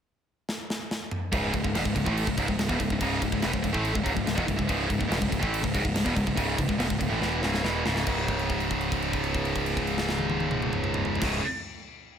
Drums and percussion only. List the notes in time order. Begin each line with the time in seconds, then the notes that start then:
0.49 snare
0.70 snare
0.91 snare
1.11 mid tom
1.33 kick, crash
1.54 kick, crash
1.64 kick
1.75 snare, crash
1.85 kick
1.96 kick, crash
2.06 kick
2.17 crash
2.27 kick
2.38 kick, crash
2.48 kick
2.59 snare, crash
2.69 kick
2.80 kick, crash
2.90 kick
3.01 kick, crash
3.22 kick, crash
3.32 kick
3.42 snare, crash
3.53 kick
3.64 kick, crash
3.74 kick
3.85 crash
3.95 kick
4.06 kick, crash
4.17 kick
4.27 snare, crash
4.38 kick
4.48 kick, crash
4.59 kick
4.69 kick, crash
4.90 kick, crash
5.01 kick
5.12 snare, crash
5.22 kick
5.32 kick, crash
5.43 kick
5.54 crash
5.64 kick
5.75 kick, crash
5.85 kick
5.96 snare, crash
6.06 kick
6.17 kick, crash
6.27 kick
6.37 kick, crash
6.58 kick, crash
6.69 kick
6.80 snare, crash
6.90 kick
7.01 kick, crash
7.22 snare
7.43 snare
7.54 snare
7.65 snare
7.86 snare
7.96 snare
8.06 kick, crash
8.28 kick, crash
8.39 crash
8.50 kick, crash
8.60 crash
8.71 kick, crash
8.81 crash
8.92 kick, crash
9.02 crash
9.13 kick, crash
9.24 crash
9.34 kick, crash
9.45 crash
9.55 kick, crash
9.66 crash
9.77 kick, crash
9.87 crash
9.98 snare
10.09 snare
10.19 high tom
10.30 high tom
10.40 high tom
10.51 mid tom
10.62 mid tom
10.73 mid tom
10.84 mid tom
10.94 mid tom
11.05 floor tom
11.15 floor tom
11.21 kick, snare, crash